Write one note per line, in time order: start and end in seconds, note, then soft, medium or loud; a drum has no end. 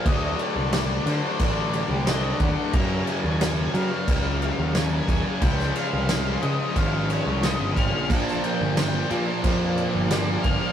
0.06 0.33 D2 loud
0.06 0.72 D3 medium
0.06 0.73 F#3 loud
0.06 0.73 A3 loud
0.06 0.74 D4 loud
0.06 0.39 D#5 loud
0.06 kick loud
0.06 crash medium
0.39 1.06 D5 medium
0.39 crash medium
0.56 0.97 C2 medium
0.73 1.06 D3 loud
0.73 1.08 F#3 medium
0.73 1.07 A3 loud
0.73 1.08 D4 loud
0.73 snare loud
0.73 crash loud
1.06 1.20 D3 medium
1.06 1.39 D3 medium
1.06 1.40 F#3 loud
1.06 1.40 A3 loud
1.06 1.41 D4 loud
1.06 1.39 C5 medium
1.06 crash medium
1.39 1.81 A1 loud
1.39 2.06 D3 loud
1.39 2.06 F#3 medium
1.39 2.07 A3 loud
1.39 2.07 D4 loud
1.39 1.71 D5 loud
1.39 kick medium
1.39 crash medium
1.72 2.05 D5 medium
1.72 crash medium
1.89 2.31 C2 loud
2.05 2.39 D3 medium
2.05 2.39 F#3 loud
2.05 2.39 A3 loud
2.05 2.40 D4 loud
2.05 2.40 D#5 loud
2.05 snare loud
2.05 crash medium
2.39 2.54 D#2 medium
2.39 2.72 D3 medium
2.39 2.72 F#3 medium
2.39 2.72 A3 medium
2.39 2.72 D4 loud
2.39 2.71 F#5 loud
2.39 kick medium
2.39 crash medium
2.72 3.39 F#2 loud
2.72 3.01 F#2 loud
2.72 3.39 C#3 loud
2.72 3.40 F#3 loud
2.72 3.40 A#3 loud
2.72 3.41 C#4 loud
2.72 3.07 A#5 loud
2.72 kick loud
2.72 crash medium
3.05 3.38 G#5 loud
3.05 crash medium
3.24 3.65 D#2 loud
3.40 3.73 F#2 loud
3.40 3.73 C#3 loud
3.40 3.74 F#3 medium
3.40 3.74 A#3 loud
3.40 3.75 C#4 loud
3.40 3.71 G#5 loud
3.40 snare loud
3.40 crash loud
3.74 4.08 F#2 medium
3.74 4.08 C#3 medium
3.74 3.88 F#3 medium
3.74 4.09 F#3 loud
3.74 4.09 A#3 loud
3.74 4.09 C#4 loud
3.74 4.75 F5 loud
3.74 crash medium
4.08 4.49 C#2 loud
4.08 4.74 F#2 loud
4.08 4.75 C#3 loud
4.08 4.75 F#3 loud
4.08 4.76 A#3 loud
4.08 4.76 C#4 loud
4.08 kick medium
4.08 crash medium
4.42 crash medium
4.59 5.00 D#2 loud
4.75 5.07 F#2 medium
4.75 5.08 C#3 medium
4.75 5.08 F#3 loud
4.75 5.09 A#3 loud
4.75 5.09 C#4 loud
4.75 5.07 G#5 loud
4.75 snare loud
4.75 crash medium
5.08 5.22 D#2 medium
5.08 5.40 F#2 medium
5.08 5.40 C#3 medium
5.08 5.40 F#3 medium
5.08 5.41 A#3 loud
5.08 5.41 C#4 medium
5.08 5.39 G#5 loud
5.08 kick medium
5.08 crash medium
5.41 5.69 C#2 loud
5.41 6.08 C#3 medium
5.41 6.09 F3 loud
5.41 6.09 G#3 loud
5.41 6.09 C#4 loud
5.41 5.75 G5 loud
5.41 kick loud
5.41 crash medium
5.59 snare soft
5.75 6.44 F5 loud
5.75 crash medium
5.93 6.34 C2 medium
6.09 6.42 C#3 medium
6.09 6.43 F3 medium
6.09 6.42 G#3 medium
6.09 6.43 C#4 loud
6.09 snare loud
6.09 crash loud
6.42 6.74 C#3 medium
6.42 6.56 C#3 loud
6.42 6.75 F3 medium
6.42 6.75 G#3 loud
6.42 6.75 C#4 loud
6.42 6.77 D#5 medium
6.42 crash medium
6.76 7.17 G#1 medium
6.76 7.42 C#3 loud
6.76 7.42 F3 medium
6.76 7.42 G#3 loud
6.76 7.43 C#4 loud
6.76 7.10 F5 medium
6.76 kick medium
6.76 crash medium
7.10 7.41 C#5 medium
7.10 crash medium
7.26 7.54 C2 loud
7.43 7.74 C#3 medium
7.43 7.75 F3 loud
7.43 7.76 G#3 loud
7.43 7.76 C#4 loud
7.43 7.74 D#5 medium
7.43 snare loud
7.43 crash medium
7.60 7.74 G1 medium
7.76 7.91 G#1 medium
7.76 8.07 C#3 medium
7.76 8.08 F3 medium
7.76 8.08 G#3 medium
7.76 8.08 C#4 loud
7.76 8.10 F5 medium
7.76 kick medium
7.76 crash medium
7.94 8.08 A#1 medium
8.09 8.37 A#1 loud
8.09 8.76 A#2 medium
8.09 8.76 F3 medium
8.09 8.77 A#3 loud
8.09 8.78 D4 loud
8.09 8.43 A5 loud
8.09 kick loud
8.09 crash medium
8.28 snare soft
8.43 8.75 G5 medium
8.43 crash medium
8.61 9.02 G1 medium
8.76 9.09 A#2 medium
8.76 9.09 F3 medium
8.76 9.10 A#3 medium
8.76 9.11 D4 medium
8.76 9.07 G5 medium
8.76 snare loud
8.76 crash loud
9.10 9.42 A#2 medium
9.10 9.24 A#2 medium
9.10 9.42 F3 medium
9.10 9.43 A#3 loud
9.10 9.44 D4 loud
9.10 crash medium
9.43 9.85 F2 loud
9.43 10.10 A#2 medium
9.43 10.11 F3 loud
9.43 10.11 A#3 medium
9.43 10.11 D4 medium
9.43 kick loud
9.43 crash medium
9.75 10.41 D5 medium
9.75 crash medium
9.95 10.36 G1 loud
10.10 10.43 A#2 medium
10.10 10.44 F3 loud
10.10 10.45 A#3 loud
10.10 10.45 D4 loud
10.10 snare loud
10.10 crash medium
10.42 10.58 G1 medium
10.42 10.72 A#2 medium
10.42 10.72 F3 medium
10.42 10.72 F5 loud
10.42 kick medium
10.42 crash medium
10.46 10.72 A#3 loud
10.46 10.72 D4 medium